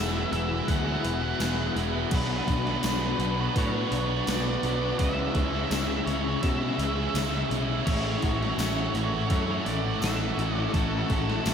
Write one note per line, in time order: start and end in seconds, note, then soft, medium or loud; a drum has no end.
0.00 0.24 E1 medium
0.00 0.31 E3 loud
0.00 0.67 F#3 medium
0.00 0.32 G#3 loud
0.00 0.34 B3 loud
0.00 0.34 E4 loud
0.00 1.75 F#4 medium
0.00 1.40 G#4 medium
0.00 2.08 G#4 medium
0.00 0.32 E5 medium
0.00 2.08 F#5 medium
0.00 2.09 B5 medium
0.00 2.08 E6 medium
0.32 0.60 E1 medium
0.32 0.66 E3 medium
0.32 0.53 G#3 medium
0.32 0.51 B3 medium
0.32 0.49 E4 medium
0.32 0.69 E5 loud
0.32 open hi-hat medium
0.50 0.68 G#3 medium
0.50 0.69 B3 medium
0.50 0.69 E4 medium
0.50 muted overdriven electric guitar stroke medium
0.67 0.96 D2 medium
0.67 1.01 E3 medium
0.67 2.11 F#3 medium
0.67 0.87 G#3 medium
0.67 0.86 B3 medium
0.67 0.84 E4 medium
0.67 1.72 F#5 loud
0.67 kick loud
0.67 open hi-hat medium
0.85 1.03 G#3 medium
0.85 1.03 B3 medium
0.85 1.05 E4 medium
1.03 1.33 E1 medium
1.03 1.37 E3 medium
1.03 1.23 G#3 medium
1.03 1.21 B3 medium
1.03 1.19 E4 medium
1.03 open hi-hat medium
1.20 1.39 G#3 medium
1.20 1.40 B3 medium
1.20 1.40 E4 medium
1.20 muted overdriven electric guitar stroke soft
1.38 1.68 E1 medium
1.38 1.74 E3 medium
1.38 1.75 G#3 medium
1.38 1.76 B3 loud
1.38 1.78 E4 loud
1.38 2.12 G#4 medium
1.38 snare loud
1.38 open hi-hat medium
1.38 tambourine loud
1.76 2.04 E1 medium
1.76 2.09 E3 medium
1.76 1.96 G#3 medium
1.76 1.93 B3 medium
1.76 1.92 E4 medium
1.76 2.12 F#4 medium
1.76 open hi-hat medium
1.93 2.11 G#3 medium
1.93 2.10 B3 medium
1.93 2.09 E4 medium
2.11 2.40 B1 medium
2.11 2.81 B2 medium
2.11 2.67 F#3 medium
2.11 2.65 B3 medium
2.11 2.63 D4 medium
2.11 4.96 B4 medium
2.11 4.97 F#5 medium
2.11 7.83 C#6 medium
2.11 kick loud
2.11 crash loud
2.15 3.62 B4 medium
2.48 2.76 B1 medium
2.48 4.26 D4 medium
2.48 kick medium
2.48 open hi-hat medium
2.65 2.82 F#3 medium
2.65 2.84 B3 medium
2.65 2.85 D4 medium
2.65 snare soft
2.82 3.12 B1 medium
2.82 3.17 B2 medium
2.82 3.19 F#3 loud
2.82 3.20 B3 medium
2.82 3.21 D4 loud
2.82 snare loud
2.82 open hi-hat medium
2.82 tambourine medium
3.19 3.48 B1 medium
3.19 3.53 B2 medium
3.19 3.38 F#3 medium
3.19 3.37 B3 medium
3.19 3.35 D4 medium
3.19 open hi-hat soft
3.36 3.54 F#3 medium
3.36 3.55 B3 medium
3.36 3.56 D4 medium
3.36 muted overdriven electric guitar stroke medium
3.54 3.84 A2 loud
3.54 3.88 B2 medium
3.54 3.74 F#3 medium
3.54 3.73 B3 medium
3.54 3.71 D4 medium
3.54 4.27 C#5 loud
3.54 kick loud
3.54 open hi-hat medium
3.72 3.90 F#3 medium
3.72 3.90 B3 medium
3.72 3.92 D4 medium
3.89 4.20 B1 medium
3.89 4.25 B2 medium
3.89 4.10 F#3 medium
3.89 4.08 B3 medium
3.89 4.07 D4 medium
3.89 open hi-hat medium
4.08 4.26 F#3 medium
4.08 4.27 B3 medium
4.08 4.28 D4 medium
4.08 muted overdriven electric guitar stroke soft
4.26 4.56 B1 medium
4.26 4.60 B2 loud
4.26 4.62 F#3 medium
4.26 4.63 B3 loud
4.26 4.64 D4 loud
4.26 4.99 D5 medium
4.26 snare loud
4.26 open hi-hat medium
4.26 tambourine medium
4.62 4.92 B1 medium
4.62 4.96 B2 medium
4.62 4.82 F#3 medium
4.62 4.81 B3 medium
4.62 4.79 D4 medium
4.62 open hi-hat soft
4.80 4.98 F#3 medium
4.80 4.98 B3 medium
4.80 4.97 D4 medium
4.98 5.28 C#2 medium
4.98 5.70 C#3 medium
4.98 6.07 E3 medium
4.98 5.55 G#3 medium
4.98 5.54 C#4 loud
4.98 5.52 E4 loud
4.98 7.84 G#4 medium
4.98 6.05 E5 loud
4.98 7.84 E5 medium
4.98 10.70 E6 medium
4.98 kick loud
4.98 open hi-hat medium
5.35 5.64 C#2 medium
5.35 7.14 C#4 medium
5.35 kick medium
5.35 open hi-hat medium
5.53 5.71 G#3 medium
5.53 5.72 C#4 medium
5.53 5.74 E4 medium
5.71 5.99 C#2 loud
5.71 6.06 C#3 medium
5.71 6.07 G#3 medium
5.71 6.09 C#4 loud
5.71 6.10 E4 loud
5.71 snare loud
5.71 open hi-hat medium
5.71 tambourine loud
6.06 6.35 C#2 medium
6.06 6.42 C#3 medium
6.06 6.43 E3 medium
6.06 6.27 G#3 medium
6.06 6.27 C#4 medium
6.06 6.41 C#5 medium
6.06 open hi-hat soft
6.10 6.24 E4 medium
6.25 6.43 G#3 medium
6.25 6.45 C#4 medium
6.25 6.46 E4 medium
6.25 muted overdriven electric guitar stroke soft
6.41 6.71 B2 loud
6.41 6.78 C#3 medium
6.41 6.78 E3 medium
6.41 6.63 G#3 medium
6.41 7.46 E5 medium
6.41 kick loud
6.41 open hi-hat medium
6.45 6.62 C#4 medium
6.45 6.60 E4 medium
6.61 6.79 G#3 medium
6.61 6.81 C#4 medium
6.61 6.81 E4 medium
6.78 7.07 C#2 medium
6.78 7.13 C#3 medium
6.78 7.86 E3 medium
6.78 7.00 G#3 medium
6.78 6.99 C#4 medium
6.78 6.97 E4 medium
6.78 open hi-hat medium
6.97 7.15 G#3 medium
6.97 7.17 C#4 medium
6.97 7.18 E4 medium
6.97 muted overdriven electric guitar stroke soft
7.14 7.43 C#2 medium
7.14 7.50 C#3 loud
7.14 7.51 G#3 medium
7.14 7.53 C#4 loud
7.14 7.54 E4 loud
7.14 snare loud
7.14 open hi-hat medium
7.14 tambourine loud
7.51 7.79 B1 medium
7.51 7.85 C#3 medium
7.51 7.71 G#3 medium
7.51 7.71 C#4 medium
7.51 open hi-hat medium
7.55 7.69 E4 medium
7.69 7.87 G#3 medium
7.69 7.90 C#4 medium
7.69 7.91 E4 medium
7.86 8.15 A1 medium
7.86 8.58 A2 medium
7.86 8.60 E3 loud
7.86 8.45 A3 medium
7.86 11.54 A4 medium
7.86 9.27 C#5 medium
7.86 10.71 F#5 medium
7.86 11.54 C#6 medium
7.86 kick loud
7.86 crash loud
7.90 8.43 C#4 loud
7.90 8.41 E4 medium
8.22 8.51 A1 medium
8.22 10.02 F#4 medium
8.22 kick medium
8.22 open hi-hat medium
8.42 8.61 A3 medium
8.42 8.61 C#4 medium
8.42 8.62 E4 medium
8.42 snare soft
8.58 8.87 A1 medium
8.58 10.01 A2 medium
8.58 8.95 E3 medium
8.58 8.96 A3 loud
8.58 8.98 C#4 loud
8.58 snare loud
8.58 open hi-hat medium
8.58 tambourine loud
8.62 8.99 E4 loud
8.94 9.23 A1 medium
8.94 9.30 E3 medium
8.94 9.16 A3 medium
8.94 9.15 C#4 medium
8.94 open hi-hat medium
8.99 9.12 E4 medium
9.13 9.33 C#4 medium
9.13 9.33 E4 medium
9.13 muted overdriven electric guitar stroke medium
9.17 9.31 A3 medium
9.28 9.59 F#2 loud
9.28 9.65 E3 medium
9.28 9.65 C#5 loud
9.28 kick loud
9.28 open hi-hat medium
9.32 9.51 A3 medium
9.32 9.51 C#4 medium
9.32 9.48 E4 medium
9.49 9.66 A3 medium
9.49 9.68 C#4 medium
9.49 9.69 E4 medium
9.65 9.95 A1 medium
9.65 10.01 E3 medium
9.65 9.86 A3 medium
9.65 9.86 C#4 medium
9.65 10.00 D5 loud
9.65 open hi-hat medium
9.70 9.84 E4 medium
9.85 10.02 A3 medium
9.85 10.04 C#4 medium
9.85 10.04 E4 medium
9.85 muted overdriven electric guitar stroke medium
10.00 10.31 A1 medium
10.00 10.72 A2 medium
10.00 10.37 E3 medium
10.00 10.38 A3 loud
10.00 10.76 F#4 medium
10.00 10.56 E5 loud
10.00 snare loud
10.00 open hi-hat medium
10.00 tambourine medium
10.04 10.40 C#4 loud
10.04 10.40 E4 loud
10.37 10.66 A1 medium
10.37 10.72 E3 medium
10.37 10.58 A3 medium
10.37 10.57 C#4 medium
10.37 open hi-hat soft
10.41 10.55 E4 loud
10.56 10.74 A3 medium
10.56 10.76 C#4 medium
10.56 10.72 E4 medium
10.56 10.75 D5 loud
10.73 11.02 A1 medium
10.73 11.44 A2 medium
10.73 11.45 E3 loud
10.73 11.29 A3 loud
10.73 11.28 C#4 loud
10.73 11.54 A4 medium
10.73 11.54 F#5 medium
10.73 11.54 E6 medium
10.73 kick loud
10.73 open hi-hat medium
10.78 11.26 E4 loud
11.09 11.38 A1 medium
11.09 11.54 F#4 medium
11.09 kick medium
11.09 open hi-hat medium
11.27 11.46 A3 medium
11.27 11.47 C#4 medium
11.27 11.47 E4 medium
11.27 snare soft
11.45 11.54 A1 medium
11.45 11.54 A2 medium
11.45 11.54 E3 medium
11.45 11.54 A3 loud
11.45 11.54 C#4 loud
11.45 11.54 E4 medium
11.45 snare loud
11.45 open hi-hat medium
11.45 tambourine medium